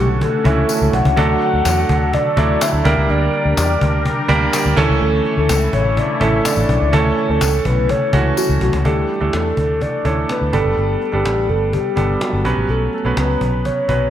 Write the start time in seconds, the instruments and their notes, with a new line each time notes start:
Already playing: fingered electric bass B1, analog synth pad D3 A3 C#4 F#4, grand piano E3 A3 C#4 A4
0.21 soft synth lead A4, cajon bass
0.44 fingered electric bass C#2, grand piano E3 A3 C#4 E4, cajon bass
0.69 cajon slap, tambourine
0.81 fingered electric bass C#2
0.93 fingered electric bass B1, soft synth lead F#5, cajon bass
1.05 fingered electric bass C#2, cajon bass
1.16 fingered electric bass D2, grand piano F#3 A3 D4 A4, analog synth pad D4 A4, cajon bass
1.41 cajon slap
1.54 fingered electric bass D2
1.65 fingered electric bass E2, cajon slap, tambourine
1.89 fingered electric bass D2, cajon bass
2.13 soft synth lead D5, cajon bass
2.36 fingered electric bass D2, grand piano F#3 A3 D4 E4, cajon bass
2.46 soft synth lead D5
2.61 soft synth lead E5, cajon slap, tambourine
2.73 fingered electric bass D2
2.85 fingered electric bass D2, grand piano G3 A#3 D4 A#4, analog synth pad G4 A#4, cajon bass
2.97 fingered electric bass C#2
3.09 fingered electric bass D2, soft synth lead D5, cajon slap
3.33 cajon slap
3.45 fingered electric bass D2
3.57 fingered electric bass E2, soft synth lead D5, cajon slap, tambourine
3.81 fingered electric bass D2, cajon bass
4.05 cajon bass
4.28 fingered electric bass D2, grand piano G3 A#3 D4 A#4, cajon bass
4.53 cajon slap, tambourine
4.66 fingered electric bass D2
4.76 fingered electric bass D2, analog synth pad C#3 A3 E4, grand piano E3 A3 C#4 A4, cajon bass
4.89 fingered electric bass C#2
5.01 fingered electric bass D2, soft synth lead A4, cajon slap
5.25 cajon slap
5.37 fingered electric bass D2, soft synth lead A4
5.49 fingered electric bass C#2, cajon slap, tambourine
5.73 fingered electric bass A1, soft synth lead C#5, cajon bass
5.97 soft synth lead D5, cajon bass
6.20 fingered electric bass A1, grand piano E3 A3 C#4 A4, soft synth lead E5, cajon bass
6.45 soft synth lead D5, cajon slap, tambourine
6.57 fingered electric bass A1
6.69 fingered electric bass B1, cajon bass
6.82 fingered electric bass C#2
6.92 fingered electric bass D2, grand piano E3 A3 C#4 A4, soft synth lead C#5, cajon bass
7.17 cajon slap
7.29 fingered electric bass D2, soft synth lead A4
7.41 fingered electric bass C#2, cajon slap, tambourine
7.65 fingered electric bass B1, soft synth lead B4, cajon bass
7.89 soft synth lead C#5, cajon bass
8.13 fingered electric bass C#2, grand piano E3 A3 C#4 F#4, cajon bass
8.37 soft synth lead F#4, cajon slap, tambourine
8.49 fingered electric bass C#2
8.61 fingered electric bass B1, soft synth lead F#4, cajon bass
8.73 fingered electric bass C#2, cajon bass
8.84 fingered electric bass D2, grand piano E3 A3 D4 A4, soft synth lead G4, cajon bass
9.09 cajon slap
9.20 fingered electric bass D2, grand piano E3 A3 D4 A4
9.33 fingered electric bass E2, soft synth lead A4, cajon slap
9.57 fingered electric bass D2, cajon bass
9.81 soft synth lead D5, cajon bass
10.04 fingered electric bass D2, grand piano E3 A3 D4 A4, soft synth lead C#5, cajon bass
10.29 soft synth lead B4, cajon slap
10.41 fingered electric bass D2
10.53 fingered electric bass G1, grand piano G3 B3 D4 A4, soft synth lead A4, cajon bass
10.65 fingered electric bass F#1
10.77 fingered electric bass G1, cajon slap
11.01 cajon slap
11.12 fingered electric bass G1, grand piano G3 B3 D4 A4, soft synth lead G4
11.25 fingered electric bass A1, cajon slap
11.49 fingered electric bass G1, soft synth lead A4, cajon slap
11.73 soft synth lead G4, cajon bass
11.96 fingered electric bass G1, grand piano G3 B3 D4 A4, cajon bass
12.21 soft synth lead F#4, cajon slap
12.33 fingered electric bass G1
12.44 fingered electric bass B1, grand piano F#3 B3 C#4 B4, soft synth lead G4, cajon bass
12.57 fingered electric bass A1
12.69 fingered electric bass B1, soft synth lead A4, cajon slap
12.93 soft synth lead A4, cajon slap
13.05 fingered electric bass B1, grand piano F#3 B3 C#4 B4
13.17 fingered electric bass C#2, soft synth lead B4, cajon slap
13.41 fingered electric bass B1, cajon bass
13.65 soft synth lead C#5, cajon bass
13.88 fingered electric bass B1, grand piano F#3 B3 C#4 B4, cajon bass